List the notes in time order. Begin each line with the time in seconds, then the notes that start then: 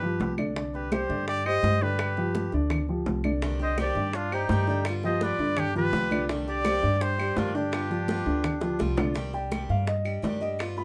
Already playing: G2 G4 B4
0.02 F3 F4 G4, high conga
0.20 C2, high bongo, low bongo, high conga
0.38 D3 D4 D5, high bongo, high conga, claves
0.56 D3 D4 D5, high bongo, high conga
0.74 G4 B4, high bongo, high conga
0.92 G3 G4 C5, high bongo, high conga, claves
1.09 G2 D3 D4 D5, high bongo, high conga
1.28 G4 D5, high bongo, high conga
1.45 G3 G4 C5 D#5, high conga, claves
1.63 G2, high bongo, low bongo, high conga
1.81 D3 D4 G4 B4 D5, high bongo, high conga
1.99 high bongo, high conga, claves
2.17 F3 F4 G4, high bongo, high conga
2.35 high bongo, high conga
2.52 D2 D3 D4 D5, high bongo, high conga
2.70 high bongo, high conga, low conga, claves
2.88 F3 F4 G4, high conga
3.06 C2, high bongo, low bongo, high conga
3.24 D3 D4 D5, high bongo, high conga, claves
3.42 C3 D3 D#3 G3 D4 G4 D5, high bongo, high conga
3.59 G3 D4 G4 C5 D#5, high bongo, high conga
3.78 C3 D#3 G3 D4 G4 C5 D5, high bongo, high conga, claves
3.95 G2 D4 D5, high bongo, high conga
4.13 D4 F4, muted steel-string acoustic guitar stroke, high bongo, high conga
4.31 G3 D4 D#4 G4 C5, high conga, claves
4.49 G2 C3 D#3 G3 D4 G4, high bongo, low bongo, high conga
4.67 D3 G3 D4 G4 D5, high bongo, high conga
4.85 G3 B3 F4, high bongo, high conga, claves
5.03 F3 F4 G4 C5 D#5, high bongo, high conga
5.07 B3
5.21 G3 B3 F4 B4 D5, high bongo, high conga
5.39 G2 D3 D4 D5, high bongo, high conga
5.57 D4 G4, muted steel-string acoustic guitar stroke, high bongo, high conga, low conga, claves
5.75 F3 B3 F4 G4 B4, high conga, low conga
5.93 C2 G3 B3 F4, high bongo, low bongo, high conga
6.11 D3 B3 D4 F4 D5, high bongo, high conga, claves
6.29 C3 D3 D#3 G3 D4 G4 D5, high bongo, high conga
6.47 G3 D4 G4 D5, high bongo, high conga
6.65 C3 D#3 G3 D4 G4 C5, high bongo, high conga, claves
6.83 G2 D4 D5, high bongo, high conga
7.01 G4 C5, muted steel-string acoustic guitar stroke, high bongo, high conga
7.18 G3 D4 G4 C5, high conga, claves
7.36 G2 C3 D#3 G3 D4 F4 G4, high bongo, low bongo, high conga
7.54 D3 G3 D4 G4 D5, high bongo, high conga
7.72 G3 B3 F4, high bongo, high conga, claves
7.90 F3 B3 F4 G4, high bongo, high conga
8.08 G3 B3 F4, high bongo, high conga
8.26 D2 D3 D4 D5, high bongo, high conga
8.44 muted steel-string acoustic guitar stroke, high bongo, high conga, low conga, claves
8.61 F3 B3 F4 G4, high bongo, high conga
8.79 C2 G3 B3 F4, high bongo, high conga
8.97 D3 B3 D4 F4 D5, low bongo, high conga, claves
9.14 C3 D#3 G3 D4 G4, high bongo, high conga
9.33 G3 D4 G4 G5, high bongo, high conga
9.51 C3 D#3 G3 D4 G4, high bongo, high conga, claves
9.69 G2 F5, high bongo, high conga
9.87 D#5, muted steel-string acoustic guitar stroke, high bongo, high conga
10.05 G3 D4 G4, high conga, claves
10.22 G2 C3 D#3 G3 D4 G4 D5, high bongo, low bongo, high conga
10.40 G3 D4 G4 D#5, high bongo, high conga
10.59 G3 B3 F4, high bongo, high conga, claves
10.77 B3 F4 B5, high bongo, high conga